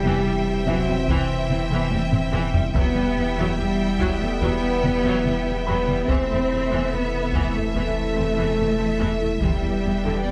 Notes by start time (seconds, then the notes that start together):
Already playing: E1 E3 G3 C4 E4 G4 D5 E5 G5
0.03 E2 C3 E3
0.25 E2 E3 G3
0.66 E2 C3 E3 F#3 E4 F#4 E5, taiko
0.86 E2 G3 C4
1.07 E2 C3 E3 E4, taiko
1.49 E2 E3 C4, taiko mid
1.70 E2 C3 E3
1.90 E2 E3 G3, taiko high
2.11 E2 C4, taiko low-mid
2.32 E2 C3 E3, taiko low-mid
2.54 E2 G3, taiko low
2.73 E1 E2 E3 F#3 G3 B3 E4 G4 B4 E5 G5, taiko
2.95 E2 G3, taiko mid
3.16 E2 B3 E4
3.36 E2 E3 F#3
3.57 E2 G3 G4
3.99 E2 E3 F#3, taiko
4.20 E2 G3 A3 E4 A4
4.41 E2 E3 F#3 B3 B4, taiko
4.82 E2 G3 B3, taiko mid
5.02 E2 E3 F#3
5.24 E2 G3, taiko mid
5.44 E2 B3 E4
5.65 E2 E3 F#3 B3 B4 B5
5.86 E2 G3 B3, taiko mid
6.07 E1 E2 C3 E3 A3 C4 E4 A4 C5 E5, taiko
6.27 E2 A3 C4
6.48 E2 C4 A4
6.69 E2 E3 A3
6.90 E2 A3 B3 C4 B4
7.32 E2 E3 A3, taiko
7.53 E2 A3 A4
7.58 A4
7.74 E2 E3 A3 A4, taiko
8.16 E2 C4
8.37 E2 E3 A3
8.58 E2 A3 C4
8.79 E2 C4 A4
8.99 E2 E3 A3
9.20 E2 A3 E4
9.41 E1 E2 D3 G3 B3 G4 B4 D5 G5, taiko
9.62 E2 G3 B3
9.84 E2 B3 G4
10.04 E2 D3 G3
10.24 E2 G3 B3 D5